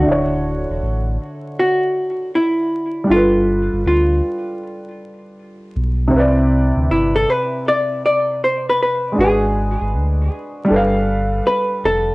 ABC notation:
X:1
M:4/4
L:1/16
Q:"Swing 16ths" 1/4=79
K:Glyd
V:1 name="Hollow-body jazz guitar"
F8 F4 E4 | =F4 F8 z4 | z4 E A B2 d2 d2 =c B B2 | ^G4 z8 B2 A2 |]
V:2 name="Upright piano"
[D,DEFc]16 | [G,D=FAB]16 | [=C,=CEBd]16 | [^G,DFB^g]8 [=G,DAB=f]8 |]
V:3 name="Sub bass" clef=bass
D,,,3 E,,, A,,,2 z8 z2 | G,,,3 G,,, D,,2 z8 B,,,2 | =C,,3 D,, G,,,2 z8 z2 | ^G,,,3 G,,, D,,2 z2 =G,,,4 z2 =F,,,2 |]